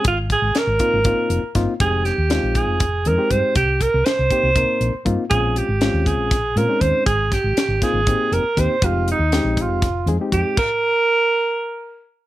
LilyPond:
<<
  \new Staff \with { instrumentName = "Alto saxophone" } { \time 7/8 \key f \minor \tempo 4 = 120 f'8 aes'8 bes'2 r8 | aes'8 g'4 aes'4 bes'8 c''8 | g'8 bes'8 c''2 r8 | aes'8 g'4 aes'4 bes'8 c''8 |
aes'8 g'4 aes'4 bes'8 c''8 | f'8 ees'4 f'4 r8 g'8 | bes'2. r8 | }
  \new Staff \with { instrumentName = "Reed electric piano" } { \time 7/8 \key f \minor r4. <bes c' ees' f'>16 r16 <bes c' ees' f'>8. r16 <bes c' ees' f'>16 r16 | <aes c' ees' g'>8. r16 <aes c' ees' f'>4 r8 <aes c' ees' bes'>16 <aes c' ees' g'>8. | r4. <bes c' ees' g'>16 r16 <bes c' ees' bes'>8. r16 <bes c' ees' f'>16 r16 | <aes c' des' f'>8. r16 <aes c' des' f'>4 r8 <aes c' des' f'>16 <aes c' des' ees'>8. |
r4. <bes c' ees' f'>16 r16 <bes c' ees' g'>8. r16 <bes c' ees' g'>16 r16 | <aes c' ees' g'>8. r16 <aes c' ees' g'>4 r8 <aes c' ees' aes'>16 <aes c' ees' g'>8. | r2. r8 | }
  \new Staff \with { instrumentName = "Fingered electric bass" } { \clef bass \time 7/8 \key f \minor aes,,8. aes,,16 r16 aes,,16 r16 aes,,8 r16 f,,16 r16 g,,16 r16 | f,,8. ees,8 bes,,8 f,,8. f,16 r16 g,16 r16 | c,8. c,16 r16 c,16 r16 c,8 r16 bes,,16 r16 g,16 r16 | bes,,8. aes,,8 ees,8 bes,,8. bes,16 r16 ees,16 r16 |
aes,,8. aes,,16 r16 aes,,16 r16 aes,,8 r16 f,,16 r16 ees,16 r16 | f,,8. ees,8 bes,,8 f,,8. f,16 r16 f,16 r16 | r2. r8 | }
  \new DrumStaff \with { instrumentName = "Drums" } \drummode { \time 7/8 <hh bd>8 <hh bd>8 <hh sn>8 <hh bd>8 <hh bd>8 hh8 <hh bd sn>8 | <hh bd>8 <hh sn>8 <hh sn>8 <hh bd>8 <hh bd>8 hh8 <hh bd>8 | <hh bd>8 <hh bd>8 <hh sn>8 <hh bd>8 <hh bd>8 hh8 <hh bd>8 | <hh bd>8 hh8 <hh sn>8 <hh bd>8 <hh bd sn>8 hh8 <hh bd>8 |
<hh bd>8 <hh bd sn>8 <hh sn>8 <hh bd sn>8 <hh bd>8 hh8 <hh bd>8 | <hh bd>8 hh8 <hh sn>8 <hh bd>8 <hh bd sn>8 hh8 <hh bd>8 | <cymc bd>4 r4 r4. | }
>>